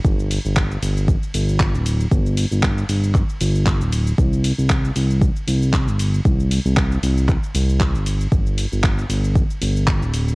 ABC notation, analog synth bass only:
X:1
M:4/4
L:1/16
Q:"Swing 16ths" 1/4=116
K:Gphr
V:1 name="Analog synth bass" clef=bass
G,,,3 G,,,3 G,,,3 z G,,,3 D,,,3 | G,,,3 G,,,3 G,,,3 z G,,,3 D,,,3 | C,,3 C,,3 C,,3 z C,,3 G,,,3 | C,,3 C,,3 C,,3 z C,,3 G,,,3 |
G,,,3 G,,,3 G,,,3 z G,,,3 D,,,3 |]